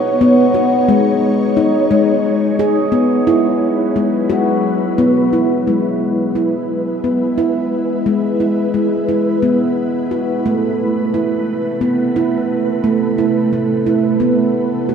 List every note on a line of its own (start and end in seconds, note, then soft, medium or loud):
0.00 0.88 B3 medium
0.00 3.25 D#4 medium
0.00 3.25 C#5 medium
0.21 0.45 B3 medium
0.54 0.78 F#4 medium
0.88 1.36 G#3 medium
0.88 3.26 G#3 medium
1.57 1.81 D#4 medium
1.91 2.38 G#3 medium
2.59 2.83 G#4 medium
2.92 3.16 B3 medium
3.27 5.65 F#3 medium
3.27 3.75 E4 medium
3.27 5.65 E4 medium
3.27 5.65 B4 medium
3.96 4.20 G#3 medium
4.30 4.77 F#4 medium
4.98 5.22 B3 medium
5.33 5.56 E4 medium
5.67 10.41 G#3 medium
5.67 6.14 G#3 medium
5.67 10.41 E4 medium
5.67 14.95 B4 medium
6.35 6.82 E4 medium
7.04 7.27 B3 medium
7.38 7.85 E4 medium
8.06 8.29 G#3 medium
8.40 8.64 E4 medium
8.74 8.98 G#3 medium
9.09 9.32 E4 medium
9.42 9.89 B3 medium
10.11 10.34 F#4 medium
10.45 14.95 C3 medium
10.45 14.95 A3 medium
10.45 10.92 A3 medium
11.14 11.61 E4 medium
11.81 12.05 B3 medium
12.16 12.63 E4 medium
12.84 13.07 A3 medium
13.18 13.42 E4 medium
13.53 13.76 A3 medium
13.86 14.10 E4 medium
14.20 14.67 B3 medium
14.89 14.95 F#4 medium